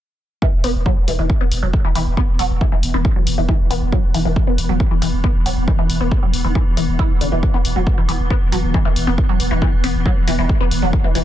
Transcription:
0.42 E3 B3, kick
0.53 E1
0.64 E1 B3, open hi-hat
0.75 E1
0.86 F#3, kick
0.97 E1
1.08 E1 E3, open hi-hat
1.19 E1 E3
1.30 kick
1.41 E1 B3
1.52 E1, open hi-hat
1.63 E1 F#3
1.73 kick
1.85 E1 E3
1.95 E1 E3, open hi-hat
2.06 E1
2.17 B3, kick
2.28 E1
2.39 E1 F#3, open hi-hat
2.50 E1
2.61 E3, kick
2.72 E1 E3
2.83 E1, open hi-hat
2.94 E1 B3
3.05 kick
3.16 E1 F#3
3.27 E1, open hi-hat
3.38 E1 E3
3.49 E3, kick
3.60 E1
3.70 E1 B3, open hi-hat
3.82 E1
3.92 F#3, kick
4.04 E1
4.14 E1 E3, open hi-hat
4.25 E1 E3
4.36 kick
4.47 E1 B3
4.58 E1, open hi-hat
4.69 E1 F#3
4.80 kick
4.91 E1 E3
5.02 E1 E3, open hi-hat
5.13 E1
5.24 B3, kick
5.35 E1
5.46 E1 F#3, open hi-hat
5.57 E1
5.68 E3, kick
5.79 E1 E3
5.89 E1, open hi-hat
6.01 E1 B3
6.11 kick
6.22 E1 F#3
6.33 E1, open hi-hat
6.44 E1 E3
6.55 E3, kick
6.66 E1
6.77 E1 E3, open hi-hat
6.88 E1
6.99 E4, kick
7.10 E1
7.21 E1 D3, open hi-hat
7.32 E1 E3
7.43 kick
7.54 E1 B3
7.65 E1, open hi-hat
7.76 E1 F#3
7.87 kick
7.98 E1 E3
8.09 E1 E3, open hi-hat
8.20 E1
8.30 B3, kick
8.42 E1
8.52 E1 F#3, open hi-hat
8.63 E1
8.74 E3, kick
8.85 E1 E3
8.96 E1, open hi-hat
9.07 E1 B3
9.18 kick
9.29 E1 F#3
9.40 E1, open hi-hat
9.51 E1 E3
9.62 E3, kick
9.73 E1
9.84 E1 B3, open hi-hat
9.95 E1
10.06 F#3, kick
10.17 E1
10.28 E1 E3, open hi-hat
10.39 E1 E3
10.49 kick
10.60 E1 B3
10.71 E1, open hi-hat
10.82 E1 F#3
10.93 kick
11.04 E1 E3
11.15 E1 E3, open hi-hat

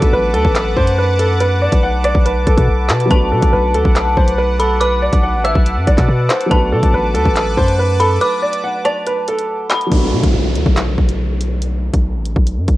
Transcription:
Already playing: F#3 A3 B3 D4 F#4 A4 B4 F#5 A5 D6
0.02 B1, kick, closed hi-hat
0.13 A1 B4
0.34 D2 A4, closed hi-hat
0.45 A1, kick
0.55 clap, closed hi-hat
0.77 F#2 C5, kick
0.87 closed hi-hat
0.98 B4
1.19 A4, closed hi-hat
1.40 B4, closed hi-hat
1.62 D5
1.72 B1, kick, closed hi-hat
1.83 F#5
2.04 D5, cross-stick, closed hi-hat
2.15 B1, kick
2.26 B4, closed hi-hat
2.47 B1 A4, kick, closed hi-hat
2.57 B2, kick, closed hi-hat
2.68 B1
2.89 B2, clap, closed hi-hat
3.00 closed hi-hat
3.06 F#3 A3
3.11 B1 B3 D4 B4 F#5 A5, kick, closed hi-hat
3.15 F#4
3.32 B2 A4
3.42 B1, kick, closed hi-hat
3.53 B1 B4
3.74 D2 A4, closed hi-hat
3.85 B1, kick
3.96 clap, closed hi-hat
4.17 B1 C5, kick
4.28 closed hi-hat
4.38 B4
4.59 A4 B5, closed hi-hat
4.80 B4 D6, closed hi-hat
5.02 D5
5.13 B1, kick, closed hi-hat
5.23 F#5
5.34 A1
5.44 E5 E6, cross-stick, closed hi-hat
5.55 B1, kick
5.66 closed hi-hat
5.77 F#2
5.87 B1 D5, kick, closed hi-hat
5.98 B2, kick, clap, closed hi-hat
6.08 B2
6.30 C5, clap, closed hi-hat
6.41 closed hi-hat
6.46 F#3 A3
6.51 B1 B3 D4 B4 A5 D6, kick, closed hi-hat
6.56 F#4
6.72 B2 A4
6.83 B1, kick, closed hi-hat
6.94 A1 B4
7.14 D2 A4, closed hi-hat
7.25 A1, kick
7.36 clap, closed hi-hat
7.57 F#2 C5, kick
7.68 closed hi-hat
7.79 B4
8.00 A4 B5, closed hi-hat
8.21 B4 D6, closed hi-hat
8.42 D5
8.53 closed hi-hat
8.64 F#5
8.85 D5 A5, cross-stick, closed hi-hat
9.06 B4, closed hi-hat
9.28 A4, closed hi-hat
9.38 closed hi-hat
9.70 B5, clap, closed hi-hat
9.81 closed hi-hat
9.87 F#3 A3
9.91 B1 B3 D4, kick, closed hi-hat, downlifter
9.96 F#4
10.13 B2
10.23 B1, kick, closed hi-hat
10.34 B1
10.55 D2, closed hi-hat
10.66 B1, kick
10.77 clap, closed hi-hat
10.98 B1, kick
11.09 closed hi-hat
11.41 closed hi-hat
11.62 closed hi-hat
11.94 B1, kick, closed hi-hat
12.15 A1
12.26 closed hi-hat
12.36 B1, kick
12.47 closed hi-hat
12.57 F#2
12.68 B1, kick, closed hi-hat

